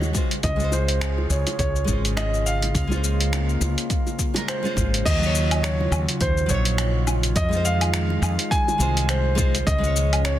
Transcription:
Already playing: D#2 C#3 G#3 D#4 F#4 C#5
0.02 high bongo, shaker
0.13 G#3 C#4 F4 G#4 C5, kick, shaker
0.31 closed hi-hat, shaker
0.43 C#2 D#5, kick, closed hi-hat, high bongo, shaker
0.56 G#3 C#4, shaker
0.61 F4 C5
0.72 C5, high bongo, shaker
0.88 closed hi-hat, shaker
1.01 finger snap, closed hi-hat, shaker
1.18 high bongo
1.30 C#2 C#5, shaker
1.47 closed hi-hat, high bongo, shaker
1.59 C#2 C#5, kick, closed hi-hat, shaker
1.76 shaker
1.84 G#1 G#3 C#4, kick, high bongo, shaker
1.90 F4 C5
2.05 closed hi-hat, shaker
2.17 D#5, finger snap, closed hi-hat, high bongo, shaker
2.34 shaker
2.46 A#3 F5, shaker
2.62 closed hi-hat, high bongo, shaker
2.74 C#2, kick, closed hi-hat, shaker
2.87 G#3 C#4
2.91 F4 C5, high bongo, shaker
3.04 shaker
3.21 closed hi-hat, shaker
3.33 finger snap, closed hi-hat, high bongo, shaker
3.49 shaker
3.61 C#2, high bongo, shaker
3.78 closed hi-hat, shaker
3.90 kick, closed hi-hat, shaker
4.07 high bongo, shaker
4.19 kick, shaker
4.34 G#3 C#4 F4, closed hi-hat, high bongo, shaker
4.38 A#4
4.48 C5, finger snap, closed hi-hat, shaker
4.63 G#3 C#4 F4 C5, shaker
4.76 G#1, kick, high bongo, shaker
4.94 closed hi-hat, shaker
5.05 D#2 C#3 F#3 F4 D#5, kick, closed hi-hat, crash, shaker
5.18 F#3 D#4
5.23 F4 C#5, shaker
5.35 shaker
5.51 closed hi-hat, low woodblock, shaker
5.56 D#5
5.63 C#5, finger snap, closed hi-hat, shaker
5.80 high bongo
5.91 D#2, low woodblock, shaker
6.09 closed hi-hat, shaker
6.21 D#2 C5, kick, closed hi-hat, shaker
6.37 shaker
6.46 A#1 F#3 D#4, kick, shaker
6.50 F4 C#5
6.65 closed hi-hat, shaker
6.78 finger snap, closed hi-hat, shaker
7.07 high bongo, low woodblock, shaker
7.23 closed hi-hat, shaker
7.36 F2 D#3 G#3 D#5, kick, closed hi-hat, shaker
7.49 G#3 D#4, shaker
7.54 F4 C5
7.65 F5, shaker
7.81 closed hi-hat, low woodblock, shaker
7.94 finger snap, closed hi-hat, shaker
8.10 high bongo
8.22 F2, low woodblock, shaker
8.39 closed hi-hat, shaker
8.51 G#5, kick, closed hi-hat, shaker
8.68 high bongo, shaker
8.78 C2 G#3 D#4 F4 C5, shaker
8.97 closed hi-hat, shaker
9.09 C5, finger snap, closed hi-hat, shaker
9.35 G#3 D#4 F4 C5, kick, shaker
9.55 closed hi-hat, shaker
9.67 C#2 F3 C#4 D#5, kick, closed hi-hat, shaker
9.78 G#3 C#4
9.83 F4 C#5, shaker
9.96 shaker
10.13 closed hi-hat, low woodblock, shaker
10.25 C#5, finger snap, closed hi-hat, shaker

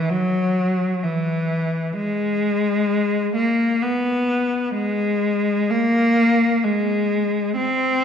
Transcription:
0.10 F#3
1.04 E3
1.95 G#3
3.35 A#3
3.83 B3
4.74 G#3
5.71 A#3
6.64 G#3
7.56 C4

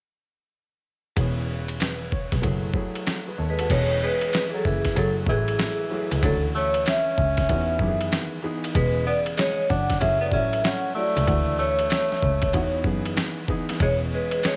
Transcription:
1.16 E1 E3 B3 C#4 G#4, kick, ride
1.68 ride
1.80 G#4 B4, snare, hi-hat pedal, ride
2.12 C#5, kick
2.32 B1 G#4 B4, kick, snare, ride
2.42 F#1 F#3 A3 E4 G#4, kick, ride
2.73 F#3 A3 E4 G#4, kick
2.95 ride
3.07 snare, hi-hat pedal, ride
3.27 G#4 B4
3.38 D#2 A4 C#5
3.50 G#3 B4
3.59 F#4 A4, ride
3.69 E1 E3 G#3 B3 C#4 G#4 C#5, kick, crash, ride
4.03 G#3 B4
4.21 ride
4.33 snare, hi-hat pedal, ride
4.49 E3 G#4
4.54 F#3 A4
4.65 F#1 E3 G#4, kick
4.85 kick, snare, ride
4.95 F#1 F#3 A3 E4 G#4 A4, kick, ride
5.27 A1 E3 F#3 A3 E4 G#4 B4, kick
5.48 ride
5.59 snare, hi-hat pedal, ride
5.90 F#3 A3 E4 G#4
6.11 C#2, ride
6.22 D2 D3 E3 F#3 C#4 E4 A4, kick, ride
6.31 F#4
6.55 A3 C#5
6.74 ride
6.86 C#4 E5, snare, hi-hat pedal, ride
7.18 C#2, kick
7.37 kick, snare, ride
7.48 E2 E3 B3 D#4 F#4, kick, ride
7.79 F#2 D#3 E3 B3 G4, kick
7.88 G#4
8.01 ride
8.12 snare, hi-hat pedal, ride
8.42 E3 B3 D#4 G#4
8.64 ride
8.74 E1 C#3 E3 G#3 B3 G#4 B4, kick, ride
9.07 B3 D5
9.26 ride
9.37 G#3 C#5, snare, hi-hat pedal, ride
9.70 F#1 D4 F#5, kick
9.90 kick, snare, ride
10.00 F#1 F#3 A3 C#4 E4 G#4 E5, kick, ride
10.21 B3 D5
10.32 A1 F#3 A3 C#4 E4 F#4 E5, kick
10.53 ride
10.64 C#4 F#5, snare, hi-hat pedal, ride
10.95 F#3 A3 E4 F#4 D5
11.17 C#2, ride
11.26 D2 E3 D4 E4 F#4, kick, ride
11.59 A3 C#5
11.79 ride
11.90 snare, hi-hat pedal, ride
12.12 snare
12.22 C#2, kick
12.42 kick, ride
12.53 E2 E3 B3 D#4 F#4, kick, ride
12.84 F#2 E3 B3 D#4 G#4, kick
13.06 ride
13.17 snare, hi-hat pedal, ride
13.48 E3 B3 D#4 G#4, kick
13.69 snare, ride
13.80 E1 E3 G#3 B3 C#4 G#4 C#5, kick, ride
14.14 G#3 B4
14.31 ride
14.43 G#3 C#5, snare, hi-hat pedal, ride

